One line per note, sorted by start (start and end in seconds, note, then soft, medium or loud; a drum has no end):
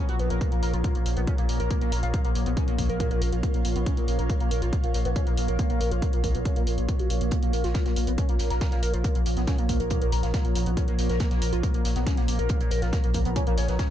0.00 7.30 A#2 medium
0.00 7.30 F3 medium
0.00 13.90 F4 medium
0.00 13.90 A#4 medium
0.00 13.90 C#5 medium
0.00 1.19 A#5 medium
0.09 0.19 A#1 medium
0.09 0.15 F#4 loud
0.09 closed hi-hat soft
0.19 0.30 A#1 loud
0.19 0.29 B3 medium
0.19 closed hi-hat medium
0.30 0.41 A#1 medium
0.30 0.40 A#4 medium
0.30 closed hi-hat medium
0.41 0.47 A#3 medium
0.41 kick loud
0.41 closed hi-hat medium
0.52 0.62 A#1 medium
0.52 0.61 A#3 loud
0.52 closed hi-hat soft
0.63 0.73 A#1 loud
0.63 0.72 A#4 medium
0.63 open hi-hat loud
0.73 0.84 A#1 medium
0.73 0.77 F4 medium
0.73 closed hi-hat soft
0.84 0.88 A#3 medium
0.84 kick loud
0.84 closed hi-hat medium
0.95 1.05 A#1 medium
0.95 1.01 A#3 medium
0.95 closed hi-hat medium
1.06 1.16 A#1 loud
1.06 1.10 A#3 medium
1.06 open hi-hat loud
1.17 1.27 A#1 medium
1.17 1.20 B3 medium
1.17 8.09 F5 medium
1.17 closed hi-hat medium
1.27 1.34 C#4 medium
1.27 kick loud
1.27 closed hi-hat medium
1.38 1.48 A#1 medium
1.38 1.44 A#3 loud
1.38 closed hi-hat medium
1.49 1.59 A#1 medium
1.49 1.58 A#3 medium
1.49 open hi-hat loud
1.60 1.70 A#1 medium
1.60 1.69 A#4 medium
1.60 closed hi-hat medium
1.71 1.77 A#3 medium
1.71 kick loud
1.71 closed hi-hat medium
1.81 1.92 A#1 medium
1.81 1.91 A#3 loud
1.81 closed hi-hat soft
1.92 2.02 A#1 loud
1.92 2.02 A#4 medium
1.92 open hi-hat loud
2.03 2.14 A#1 medium
2.03 2.07 F4 medium
2.03 closed hi-hat soft
2.14 2.17 A#3 medium
2.14 kick loud
2.14 closed hi-hat medium
2.25 2.35 A#1 medium
2.25 2.31 A#3 medium
2.25 closed hi-hat soft
2.35 2.46 A#1 loud
2.35 2.39 A#3 medium
2.35 open hi-hat loud
2.46 2.57 A#1 medium
2.46 2.50 B3 medium
2.46 closed hi-hat soft
2.57 2.63 C#4 medium
2.57 kick loud
2.57 closed hi-hat medium
2.68 2.78 A#1 medium
2.68 2.74 A#3 loud
2.68 closed hi-hat medium
2.78 2.89 A#1 medium
2.78 2.88 A#3 medium
2.78 kick medium
2.78 open hi-hat loud
2.89 3.00 A#1 medium
2.89 2.99 A#4 medium
2.89 closed hi-hat soft
3.00 3.06 A#3 medium
3.00 kick loud
3.00 closed hi-hat medium
3.11 3.21 A#1 medium
3.11 3.20 A#3 loud
3.11 closed hi-hat soft
3.22 3.32 A#1 loud
3.22 3.31 A#4 medium
3.22 open hi-hat loud
3.32 3.43 A#1 medium
3.32 3.36 F4 medium
3.32 closed hi-hat medium
3.43 3.47 A#3 medium
3.43 kick loud
3.43 closed hi-hat medium
3.54 3.64 A#1 medium
3.54 3.60 A#3 medium
3.54 closed hi-hat soft
3.65 3.75 A#1 loud
3.65 3.69 A#3 medium
3.65 open hi-hat loud
3.76 3.86 A#1 medium
3.76 3.79 B3 medium
3.76 closed hi-hat soft
3.86 3.93 C#4 medium
3.86 kick loud
3.86 closed hi-hat medium
3.97 4.07 A#1 medium
3.97 4.03 A#3 loud
3.97 closed hi-hat medium
4.08 4.18 A#1 loud
4.08 4.17 A#3 medium
4.08 open hi-hat loud
4.19 4.29 A#1 medium
4.19 4.28 A#4 medium
4.19 closed hi-hat soft
4.29 4.36 A#3 medium
4.29 kick loud
4.29 closed hi-hat medium
4.40 4.50 A#1 medium
4.40 4.50 A#3 loud
4.40 closed hi-hat medium
4.51 4.61 A#1 loud
4.51 4.61 A#4 medium
4.51 open hi-hat medium
4.62 4.72 A#1 medium
4.62 4.66 F4 medium
4.62 closed hi-hat soft
4.73 4.76 A#3 medium
4.73 kick loud
4.73 closed hi-hat medium
4.84 4.94 A#1 medium
4.84 4.90 A#3 medium
4.84 closed hi-hat medium
4.94 5.05 A#1 loud
4.94 4.98 A#3 medium
4.94 open hi-hat loud
5.05 5.16 A#1 medium
5.05 5.09 B3 medium
5.05 closed hi-hat medium
5.16 5.22 C#4 medium
5.16 kick loud
5.16 closed hi-hat medium
5.27 5.37 A#1 medium
5.27 5.33 A#3 loud
5.27 closed hi-hat soft
5.37 5.48 A#1 loud
5.37 5.47 A#3 medium
5.37 open hi-hat loud
5.48 5.59 A#1 medium
5.48 5.58 A#4 medium
5.48 closed hi-hat medium
5.59 5.65 A#3 medium
5.59 kick loud
5.59 closed hi-hat loud
5.70 5.80 A#1 medium
5.70 5.79 A#3 loud
5.70 closed hi-hat medium
5.81 5.91 A#1 loud
5.81 5.90 A#4 medium
5.81 open hi-hat loud
5.91 6.02 A#1 medium
5.91 5.95 F4 medium
5.91 closed hi-hat medium
6.02 6.06 A#3 medium
6.02 kick loud
6.02 closed hi-hat medium
6.13 6.23 A#1 medium
6.13 6.19 A#3 medium
6.13 closed hi-hat medium
6.24 6.34 A#1 loud
6.24 6.28 A#3 medium
6.24 kick medium
6.24 open hi-hat loud
6.35 6.45 A#1 medium
6.35 6.38 B3 medium
6.35 closed hi-hat medium
6.45 6.52 C#4 medium
6.45 kick loud
6.45 closed hi-hat medium
6.56 6.66 A#1 medium
6.56 6.62 A#3 loud
6.56 closed hi-hat medium
6.67 6.77 A#1 loud
6.67 6.71 A#4 medium
6.67 open hi-hat loud
6.78 6.88 A#1 medium
6.78 6.87 A#3 medium
6.78 closed hi-hat medium
6.89 6.95 B3 medium
6.89 kick loud
6.89 closed hi-hat medium
6.99 7.09 A#1 medium
6.99 7.09 F#4 medium
6.99 closed hi-hat medium
7.10 7.20 A#1 loud
7.10 7.14 A#3 medium
7.10 open hi-hat loud
7.21 7.31 A#1 medium
7.21 7.25 A#3 medium
7.21 closed hi-hat medium
7.31 13.90 A#2 medium
7.31 13.90 F3 medium
7.31 7.38 A#3 medium
7.31 kick loud
7.31 closed hi-hat medium
7.31 closed hi-hat loud
7.43 7.53 A#1 medium
7.43 7.52 A#3 loud
7.43 closed hi-hat medium
7.53 7.63 A#1 loud
7.53 7.63 A#4 medium
7.53 closed hi-hat medium
7.53 open hi-hat loud
7.64 7.75 A#1 medium
7.64 7.68 F4 medium
7.64 snare medium
7.64 closed hi-hat medium
7.74 7.79 A#3 medium
7.74 kick loud
7.74 snare loud
7.74 closed hi-hat loud
7.74 closed hi-hat medium
7.86 7.96 A#1 medium
7.86 7.92 A#3 medium
7.86 snare medium
7.86 closed hi-hat medium
7.96 8.07 A#1 loud
7.96 8.00 A#3 medium
7.96 closed hi-hat medium
7.96 open hi-hat loud
8.07 8.18 A#1 medium
8.07 8.11 B3 medium
8.07 13.90 A#5 medium
8.07 closed hi-hat medium
8.07 closed hi-hat soft
8.18 8.24 C#4 medium
8.18 kick loud
8.18 closed hi-hat medium
8.29 8.39 A#1 medium
8.29 8.35 A#3 loud
8.29 closed hi-hat medium
8.39 8.50 A#1 loud
8.39 8.49 A#3 medium
8.39 snare medium
8.39 closed hi-hat medium
8.39 open hi-hat loud
8.50 8.61 A#1 medium
8.50 8.60 A#4 medium
8.50 snare soft
8.50 closed hi-hat medium
8.61 8.67 A#3 medium
8.61 kick loud
8.61 snare loud
8.61 closed hi-hat loud
8.61 closed hi-hat medium
8.71 8.82 A#1 medium
8.71 8.81 A#3 loud
8.71 snare medium
8.71 closed hi-hat medium
8.83 8.93 A#1 medium
8.83 8.92 A#4 medium
8.83 closed hi-hat medium
8.83 open hi-hat loud
8.94 9.04 A#1 medium
8.94 8.97 F4 medium
8.94 closed hi-hat medium
9.04 9.08 A#3 medium
9.04 kick loud
9.04 closed hi-hat loud
9.04 closed hi-hat medium
9.15 9.25 A#1 medium
9.15 9.21 A#3 medium
9.15 closed hi-hat medium
9.15 closed hi-hat soft
9.26 9.36 A#1 loud
9.26 9.30 A#3 medium
9.26 closed hi-hat medium
9.26 open hi-hat loud
9.37 9.47 A#1 medium
9.37 9.40 B3 medium
9.37 snare soft
9.37 closed hi-hat medium
9.47 9.54 C#4 medium
9.47 kick loud
9.47 snare loud
9.47 closed hi-hat medium
9.47 closed hi-hat loud
9.58 9.68 A#1 medium
9.58 9.65 A#3 loud
9.58 closed hi-hat medium
9.69 9.79 A#1 medium
9.69 9.79 A#3 medium
9.69 kick medium
9.69 closed hi-hat medium
9.69 open hi-hat loud
9.80 9.90 A#1 medium
9.80 9.89 A#4 medium
9.80 closed hi-hat medium
9.80 closed hi-hat soft
9.90 9.97 A#3 medium
9.90 kick loud
9.90 closed hi-hat medium
10.01 10.12 A#1 medium
10.01 10.11 A#3 loud
10.01 closed hi-hat medium
10.12 10.23 A#1 loud
10.12 10.22 A#4 medium
10.12 closed hi-hat medium
10.12 open hi-hat loud
10.23 10.34 A#1 medium
10.23 10.27 F4 medium
10.23 snare soft
10.23 closed hi-hat medium
10.34 10.38 A#3 medium
10.34 kick loud
10.34 snare loud
10.34 closed hi-hat loud
10.34 closed hi-hat medium
10.45 10.55 A#1 medium
10.45 10.51 A#3 medium
10.45 closed hi-hat medium
10.55 10.66 A#1 loud
10.55 10.59 A#3 medium
10.55 closed hi-hat medium
10.55 open hi-hat loud
10.66 10.77 A#1 medium
10.66 10.70 B3 medium
10.66 closed hi-hat medium
10.77 10.83 C#4 medium
10.77 kick loud
10.77 closed hi-hat loud
10.77 closed hi-hat medium
10.88 10.98 A#1 medium
10.88 10.94 A#3 loud
10.88 closed hi-hat medium
10.99 11.09 A#1 loud
10.99 11.08 A#3 medium
10.99 closed hi-hat medium
10.99 open hi-hat loud
11.09 11.20 A#1 medium
11.09 11.19 A#4 medium
11.09 snare medium
11.09 closed hi-hat medium
11.20 11.26 A#3 medium
11.20 kick loud
11.20 snare loud
11.20 closed hi-hat medium
11.31 11.41 A#1 medium
11.31 11.40 A#3 loud
11.31 snare medium
11.31 closed hi-hat medium
11.42 11.52 A#1 medium
11.42 11.51 A#4 medium
11.42 closed hi-hat medium
11.42 open hi-hat loud
11.53 11.63 A#1 medium
11.53 11.56 F4 medium
11.53 closed hi-hat soft
11.53 closed hi-hat medium
11.63 11.67 A#3 medium
11.63 kick loud
11.63 closed hi-hat medium
11.74 11.84 A#1 medium
11.74 11.80 A#3 medium
11.74 closed hi-hat medium
11.85 11.95 A#1 loud
11.85 11.89 A#3 medium
11.85 snare medium
11.85 closed hi-hat medium
11.85 open hi-hat loud
11.96 12.06 A#1 medium
11.96 11.99 B3 medium
11.96 snare soft
11.96 closed hi-hat medium
12.06 12.13 C#4 medium
12.06 kick loud
12.06 snare loud
12.06 closed hi-hat medium
12.06 closed hi-hat loud
12.17 12.28 A#1 medium
12.17 12.24 A#3 loud
12.17 snare medium
12.17 closed hi-hat medium
12.28 12.38 A#1 loud
12.28 12.38 A#3 medium
12.28 closed hi-hat medium
12.28 open hi-hat loud
12.39 12.49 A#1 medium
12.39 12.48 A#4 medium
12.39 closed hi-hat medium
12.49 12.56 A#3 medium
12.49 kick loud
12.49 closed hi-hat medium
12.49 closed hi-hat loud
12.60 12.71 A#1 medium
12.60 12.70 A#3 loud
12.60 closed hi-hat soft
12.60 closed hi-hat medium
12.71 12.82 A#1 loud
12.71 12.81 A#4 medium
12.71 closed hi-hat medium
12.71 open hi-hat loud
12.82 12.93 A#1 medium
12.82 12.86 F4 medium
12.82 snare soft
12.82 closed hi-hat soft
12.93 12.97 A#3 medium
12.93 kick loud
12.93 snare loud
12.93 closed hi-hat medium
13.04 13.14 A#1 medium
13.04 13.10 A#3 medium
13.04 closed hi-hat medium
13.14 13.25 A#1 loud
13.14 13.18 A#3 medium
13.14 kick medium
13.14 closed hi-hat medium
13.14 open hi-hat loud
13.25 13.36 A#1 medium
13.25 13.29 B3 medium
13.25 closed hi-hat soft
13.36 13.42 C#4 medium
13.36 kick loud
13.36 closed hi-hat medium
13.47 13.57 A#1 medium
13.47 13.53 A#3 loud
13.47 closed hi-hat medium
13.58 13.68 A#1 loud
13.58 13.67 C#4 loud
13.58 closed hi-hat medium
13.58 open hi-hat loud
13.68 13.79 A#1 medium
13.68 13.75 B3 medium
13.68 snare medium
13.68 closed hi-hat medium
13.79 13.85 C#4 loud
13.79 kick loud
13.79 snare loud
13.79 closed hi-hat medium